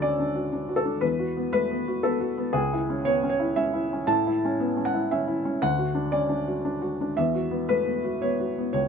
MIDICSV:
0, 0, Header, 1, 2, 480
1, 0, Start_track
1, 0, Tempo, 504626
1, 990, Time_signature, 3, 2, 24, 8
1, 3383, Tempo, 514580
1, 5303, Tempo, 518583
1, 7223, Tempo, 539568
1, 8283, End_track
2, 0, Start_track
2, 0, Title_t, "Felt piano"
2, 0, Program_c, 0, 0
2, 0, Control_c, 0, 64, 127
2, 0, Note_on_c, 0, 38, 58
2, 0, Note_on_c, 0, 62, 45
2, 0, Note_on_c, 0, 66, 51
2, 0, Note_on_c, 0, 69, 84
2, 19, Note_on_c, 0, 74, 83
2, 31, Note_on_c, 0, 61, 44
2, 133, Note_off_c, 0, 62, 0
2, 187, Note_on_c, 0, 62, 43
2, 189, Note_off_c, 0, 61, 0
2, 335, Note_off_c, 0, 66, 0
2, 335, Note_on_c, 0, 66, 47
2, 446, Note_off_c, 0, 62, 0
2, 503, Note_on_c, 0, 62, 45
2, 508, Note_off_c, 0, 74, 0
2, 600, Note_off_c, 0, 66, 0
2, 653, Note_on_c, 0, 66, 48
2, 724, Note_off_c, 0, 69, 0
2, 724, Note_on_c, 0, 69, 78
2, 763, Note_off_c, 0, 62, 0
2, 812, Note_on_c, 0, 62, 49
2, 918, Note_off_c, 0, 66, 0
2, 960, Note_on_c, 0, 71, 84
2, 965, Note_on_c, 0, 40, 57
2, 967, Note_off_c, 0, 38, 0
2, 978, Note_off_c, 0, 69, 0
2, 982, Note_off_c, 0, 62, 0
2, 1007, Control_c, 0, 64, 0
2, 1133, Note_on_c, 0, 66, 46
2, 1165, Control_c, 0, 64, 127
2, 1300, Note_on_c, 0, 59, 45
2, 1399, Note_off_c, 0, 66, 0
2, 1438, Note_off_c, 0, 71, 0
2, 1452, Note_on_c, 0, 71, 95
2, 1456, Note_on_c, 0, 57, 44
2, 1562, Note_off_c, 0, 59, 0
2, 1623, Note_off_c, 0, 57, 0
2, 1628, Note_on_c, 0, 59, 44
2, 1786, Note_on_c, 0, 66, 52
2, 1885, Note_off_c, 0, 59, 0
2, 1933, Note_on_c, 0, 69, 79
2, 1940, Note_off_c, 0, 71, 0
2, 1945, Note_on_c, 0, 59, 50
2, 2044, Note_off_c, 0, 66, 0
2, 2096, Note_on_c, 0, 66, 49
2, 2203, Note_off_c, 0, 59, 0
2, 2261, Note_on_c, 0, 59, 52
2, 2358, Note_off_c, 0, 66, 0
2, 2377, Note_off_c, 0, 40, 0
2, 2405, Note_on_c, 0, 68, 85
2, 2412, Note_on_c, 0, 37, 64
2, 2420, Note_off_c, 0, 69, 0
2, 2424, Note_off_c, 0, 59, 0
2, 2446, Control_c, 0, 64, 0
2, 2575, Control_c, 0, 64, 127
2, 2595, Note_on_c, 0, 64, 49
2, 2756, Note_on_c, 0, 61, 52
2, 2844, Note_off_c, 0, 64, 0
2, 2891, Note_off_c, 0, 68, 0
2, 2902, Note_on_c, 0, 73, 93
2, 2908, Note_on_c, 0, 59, 44
2, 3004, Note_off_c, 0, 61, 0
2, 3065, Note_off_c, 0, 59, 0
2, 3076, Note_on_c, 0, 61, 52
2, 3120, Note_off_c, 0, 73, 0
2, 3134, Note_on_c, 0, 73, 79
2, 3228, Note_on_c, 0, 64, 53
2, 3325, Note_off_c, 0, 61, 0
2, 3380, Note_off_c, 0, 73, 0
2, 3387, Note_on_c, 0, 76, 95
2, 3395, Note_on_c, 0, 61, 51
2, 3483, Note_off_c, 0, 64, 0
2, 3550, Note_on_c, 0, 64, 54
2, 3650, Note_off_c, 0, 61, 0
2, 3731, Note_on_c, 0, 61, 52
2, 3812, Note_off_c, 0, 64, 0
2, 3830, Note_off_c, 0, 37, 0
2, 3862, Note_on_c, 0, 81, 97
2, 3864, Note_on_c, 0, 45, 68
2, 3877, Note_off_c, 0, 76, 0
2, 3886, Note_off_c, 0, 61, 0
2, 3895, Control_c, 0, 64, 0
2, 4045, Note_on_c, 0, 64, 54
2, 4053, Control_c, 0, 64, 127
2, 4216, Note_on_c, 0, 61, 53
2, 4295, Note_off_c, 0, 64, 0
2, 4357, Note_on_c, 0, 59, 52
2, 4459, Note_off_c, 0, 61, 0
2, 4513, Note_off_c, 0, 59, 0
2, 4514, Note_on_c, 0, 61, 48
2, 4584, Note_off_c, 0, 81, 0
2, 4591, Note_on_c, 0, 78, 87
2, 4672, Note_on_c, 0, 64, 48
2, 4764, Note_off_c, 0, 61, 0
2, 4826, Note_off_c, 0, 78, 0
2, 4835, Note_on_c, 0, 76, 76
2, 4840, Note_on_c, 0, 61, 53
2, 4922, Note_off_c, 0, 64, 0
2, 4985, Note_on_c, 0, 64, 51
2, 5087, Note_off_c, 0, 61, 0
2, 5151, Note_on_c, 0, 61, 55
2, 5239, Note_off_c, 0, 64, 0
2, 5260, Note_off_c, 0, 45, 0
2, 5307, Note_off_c, 0, 61, 0
2, 5308, Note_off_c, 0, 76, 0
2, 5308, Note_on_c, 0, 78, 106
2, 5311, Note_on_c, 0, 38, 65
2, 5320, Control_c, 0, 64, 0
2, 5462, Note_on_c, 0, 66, 53
2, 5496, Control_c, 0, 64, 127
2, 5612, Note_on_c, 0, 62, 50
2, 5718, Note_off_c, 0, 66, 0
2, 5769, Note_on_c, 0, 74, 85
2, 5779, Note_on_c, 0, 61, 46
2, 5785, Note_off_c, 0, 78, 0
2, 5873, Note_off_c, 0, 62, 0
2, 5931, Note_on_c, 0, 62, 48
2, 5941, Note_off_c, 0, 61, 0
2, 6016, Note_off_c, 0, 74, 0
2, 6102, Note_on_c, 0, 66, 49
2, 6192, Note_off_c, 0, 62, 0
2, 6260, Note_on_c, 0, 62, 51
2, 6357, Note_off_c, 0, 66, 0
2, 6416, Note_on_c, 0, 66, 54
2, 6516, Note_off_c, 0, 62, 0
2, 6595, Note_on_c, 0, 62, 50
2, 6674, Note_off_c, 0, 66, 0
2, 6707, Note_off_c, 0, 38, 0
2, 6740, Note_on_c, 0, 76, 87
2, 6747, Note_off_c, 0, 62, 0
2, 6750, Note_on_c, 0, 40, 65
2, 6755, Control_c, 0, 64, 0
2, 6892, Control_c, 0, 64, 127
2, 6907, Note_on_c, 0, 66, 50
2, 7058, Note_on_c, 0, 59, 48
2, 7162, Note_off_c, 0, 66, 0
2, 7221, Note_on_c, 0, 71, 90
2, 7224, Note_off_c, 0, 76, 0
2, 7229, Note_on_c, 0, 57, 44
2, 7316, Note_off_c, 0, 59, 0
2, 7374, Note_on_c, 0, 59, 45
2, 7384, Note_off_c, 0, 57, 0
2, 7538, Note_on_c, 0, 66, 45
2, 7631, Note_off_c, 0, 59, 0
2, 7693, Note_on_c, 0, 73, 74
2, 7697, Note_off_c, 0, 71, 0
2, 7700, Note_on_c, 0, 59, 43
2, 7794, Note_off_c, 0, 66, 0
2, 7856, Note_on_c, 0, 66, 45
2, 7956, Note_off_c, 0, 59, 0
2, 8019, Note_on_c, 0, 59, 43
2, 8116, Note_off_c, 0, 66, 0
2, 8135, Note_off_c, 0, 73, 0
2, 8149, Note_on_c, 0, 73, 79
2, 8152, Note_off_c, 0, 40, 0
2, 8156, Note_on_c, 0, 37, 50
2, 8182, Note_off_c, 0, 59, 0
2, 8202, Control_c, 0, 64, 0
2, 8283, Note_off_c, 0, 37, 0
2, 8283, Note_off_c, 0, 73, 0
2, 8283, End_track
0, 0, End_of_file